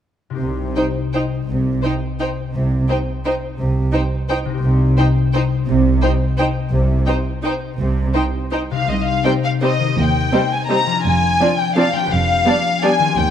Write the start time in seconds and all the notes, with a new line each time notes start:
0.30 C3 D#4
0.34 G4 C5
0.41 C2 C3
0.76 D#4 C5 G5
1.13 D#4 C5 G5
1.48 C2 C3
1.82 D#4 C5 G5
2.20 D#4 C5 G5
2.54 C2 C3
2.89 D#4 C5 G5
3.25 D#4 C5 G5
3.59 C2 C3
3.93 D#4 C5 G5
4.29 D#4 C5 G5
4.45 C3
4.50 D#4
4.54 G4
4.59 C2 C5
4.63 C3
4.97 D#4 C5 G5
5.33 D#4 C5 G5
5.68 C2 C3
6.01 D#4 C5 G5
6.37 D#4 C5 G5
6.72 C2 C3
7.07 D#4 C5 G5
7.43 D#4 C5 G5
7.78 C2 C3
8.13 D#4 C5 G5
8.52 D#4 C5 G5
8.71 C3 F5
8.75 D#4
8.80 G4
8.85 C5
8.89 C2 D#5
9.06 F5
9.24 G3 C4 D#4 C5 G5
9.44 F5
9.62 G3 C4 D#4 C5 D#5
9.79 D#3
9.83 D#4
9.88 G4
9.92 C5
9.97 D#2 G5
10.32 G3 C4 D#4 C5
10.52 G#5
10.69 G3 C4 D#4 C5 A#5
10.86 F3
10.91 D4
10.96 F4
11.00 C5
11.05 F1 F2 G#5
11.40 F3 C4 D4 D5
11.59 G5
11.76 F3 C4 D4 D5 F5
11.93 F3 G5
11.97 D4
12.02 G4
12.06 B4
12.10 F1 F2 F5
12.46 G3 B3 D4 D5
12.82 G3 B3 D4 D5 G#5
12.99 D#3
13.04 C4
13.08 G4
13.13 D#2 C5
13.17 D#2 G5